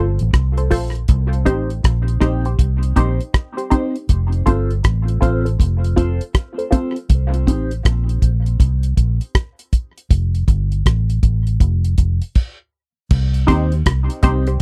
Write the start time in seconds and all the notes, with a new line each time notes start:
Already playing: G1 F4 A4 C5
0.19 A1, closed hi-hat
0.33 C2, kick, cross-stick, closed hi-hat
0.57 A4 C5, closed hi-hat
0.71 A#1 F4 A4 C5, kick, open hi-hat
0.95 closed hi-hat
1.08 C2, kick, closed hi-hat
1.33 closed hi-hat
1.45 A1 C4 D#4 G4 C5, kick, closed hi-hat
1.70 closed hi-hat
1.84 A#1, kick, cross-stick, closed hi-hat
2.08 closed hi-hat
2.20 A#1 C4 D#4 G4 C5, kick, cross-stick, closed hi-hat
2.45 G4 C5, closed hi-hat
2.59 C2, kick, closed hi-hat
2.83 closed hi-hat
2.96 A#1 C4 D#4 G4 C5, kick, closed hi-hat
3.20 closed hi-hat
3.34 kick, cross-stick, closed hi-hat
3.57 G4 C5, closed hi-hat
3.70 C4 D#4 G4 C5, kick, closed hi-hat
3.96 closed hi-hat
4.09 F1, kick, closed hi-hat
4.33 closed hi-hat
4.46 G1 C4 F4 A4 C5, kick, closed hi-hat
4.71 closed hi-hat
4.84 A1, kick, cross-stick, closed hi-hat
5.08 closed hi-hat
5.21 A1 C4 F4 A4 C5, kick, closed hi-hat
5.45 A4 C5, closed hi-hat
5.60 F1, kick, closed hi-hat
5.84 closed hi-hat
5.96 F1 C4 F4 A4 C5, kick, closed hi-hat
6.21 closed hi-hat
6.35 kick, cross-stick, closed hi-hat
6.58 A4 C5, closed hi-hat
6.71 C4 F4 A4 C5, kick, closed hi-hat
6.96 closed hi-hat
7.10 C2, kick, closed hi-hat
7.34 closed hi-hat
7.47 A1 C4 D#4 G4 C5, kick, closed hi-hat
7.71 closed hi-hat
7.85 A#1, kick, cross-stick, closed hi-hat
8.09 closed hi-hat
8.22 A#1, kick, closed hi-hat
8.46 closed hi-hat
8.60 C2, kick, closed hi-hat
8.83 closed hi-hat
8.97 A#1, kick, closed hi-hat
9.21 closed hi-hat
9.35 kick, cross-stick, closed hi-hat
9.59 closed hi-hat
9.73 kick, closed hi-hat
9.98 closed hi-hat
10.11 F1, kick, closed hi-hat
10.35 closed hi-hat
10.48 G1, kick, closed hi-hat
10.72 closed hi-hat
10.86 A1, kick, cross-stick, closed hi-hat
11.10 closed hi-hat
11.23 A1, kick, closed hi-hat
11.47 closed hi-hat
11.60 F1, kick, closed hi-hat
11.84 closed hi-hat
11.98 F1, kick, closed hi-hat
12.22 closed hi-hat
12.35 kick, crash
13.10 C2, kick, crash
13.34 closed hi-hat
13.47 D#2 C4 D#4 G4 C5, kick, closed hi-hat
13.51 G4 C5
13.72 closed hi-hat
13.86 C2, kick, cross-stick, closed hi-hat
14.10 closed hi-hat
14.23 C2 C4 D#4 G4 C5, kick, closed hi-hat
14.47 G4 C5, closed hi-hat